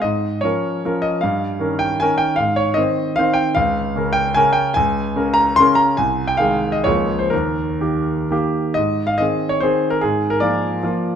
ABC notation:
X:1
M:3/4
L:1/16
Q:1/4=149
K:Ab
V:1 name="Grand piano"
e4 d6 e2 | f6 g2 a2 g2 | f2 d2 e4 f2 g2 | f6 g2 a2 g2 |
a6 b2 c'2 b2 | a3 g f3 e d3 c | B8 z4 | e3 f e3 d c3 B |
A3 B =d8 |]
V:2 name="Grand piano"
A,,4 [F,DB]4 [F,DB]4 | G,,4 [E,DB]4 [E,DB]4 | A,,4 [E,Cc]4 [E,Cc]4 | D,,4 [D,DB]4 [D,DB]4 |
D,,4 [D,DB]4 [D,DB]4 | C,,4 [E,A,A]4 [D,,F,B,A]4 | E,,4 [E,B,G]4 [E,B,G]4 | A,,4 [E,CA]4 [E,CA]4 |
A,,4 [F,B,F]4 [F,B,F]4 |]